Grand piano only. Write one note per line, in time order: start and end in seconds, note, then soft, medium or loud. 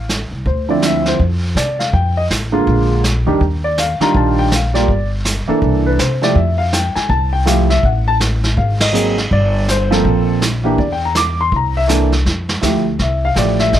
0.47 0.69 C5 medium
0.69 1.17 D3 medium
0.69 1.17 F3 medium
0.69 1.17 C4 medium
0.69 1.18 E4 medium
0.69 0.83 D5 medium
0.86 1.07 E5 medium
1.08 1.20 C5 medium
1.57 1.79 D5 medium
1.79 1.93 F5 medium
1.94 2.16 G5 medium
2.17 2.25 D#5 medium
2.52 3.01 D3 medium
2.52 3.01 G#3 medium
2.52 3.01 A#3 medium
2.52 3.01 F4 medium
3.27 3.39 D#3 medium
3.27 3.39 G3 medium
3.27 3.40 D4 medium
3.27 3.40 G4 medium
3.64 3.78 D5 medium
3.80 4.01 F5 medium
4.01 4.49 D#3 medium
4.01 4.49 G3 medium
4.01 4.49 D4 medium
4.01 4.50 F4 medium
4.01 4.15 A#5 loud
4.16 4.38 A5 medium
4.39 4.52 G5 medium
4.54 4.75 F5 medium
4.74 4.87 G3 medium
4.74 4.87 A#3 medium
4.74 4.87 F4 medium
4.74 4.88 G4 medium
4.74 5.09 D5 medium
5.48 5.96 E3 medium
5.48 5.96 A#3 medium
5.48 5.97 D4 medium
5.48 5.97 A4 medium
5.86 5.99 B4 medium
5.99 6.22 C5 medium
6.22 6.34 F3 medium
6.22 6.35 A3 medium
6.22 6.35 E4 medium
6.22 6.36 G4 medium
6.22 6.36 D5 medium
6.37 6.59 E5 medium
6.58 6.72 F5 medium
6.73 6.96 G5 medium
6.96 7.09 G#5 medium
7.09 7.32 A5 medium
7.33 7.46 G5 medium
7.46 7.67 F3 medium
7.46 7.67 A3 medium
7.46 7.68 E4 medium
7.46 7.68 G4 medium
7.46 7.70 F5 medium
7.70 7.83 E5 loud
7.85 8.07 F#5 medium
8.08 8.16 A5 loud
8.57 8.80 F5 medium
8.81 9.28 D#5 medium
8.92 9.14 F#3 medium
8.92 9.15 A#3 medium
8.92 9.15 C4 medium
8.92 9.15 G#4 medium
9.33 9.66 D5 medium
9.70 10.03 C5 medium
9.91 10.39 F3 medium
9.91 10.39 A#3 medium
9.91 10.39 C4 medium
9.91 10.39 A4 medium
10.64 10.77 E3 medium
10.64 10.77 A#3 medium
10.64 10.77 D4 medium
10.64 10.77 G4 medium
10.79 10.91 D5 medium
10.92 11.04 G5 medium
11.05 11.16 A#5 medium
11.17 11.39 D6 loud
11.41 11.53 C6 medium
11.56 11.77 A#5 medium
11.77 11.85 E5 medium
11.88 12.09 E3 medium
11.88 12.10 A#3 medium
11.88 12.10 D4 medium
11.88 12.10 A4 medium
12.61 12.83 F3 medium
12.61 12.84 A3 medium
12.61 12.84 E4 medium
12.61 12.84 G4 medium
13.02 13.24 E5 medium
13.25 13.37 F5 medium
13.36 13.73 F3 medium
13.36 13.73 A3 soft
13.36 13.73 E4 medium
13.36 13.74 G4 medium
13.36 13.60 D5 medium
13.60 13.73 E5 medium
13.74 13.80 D#5 medium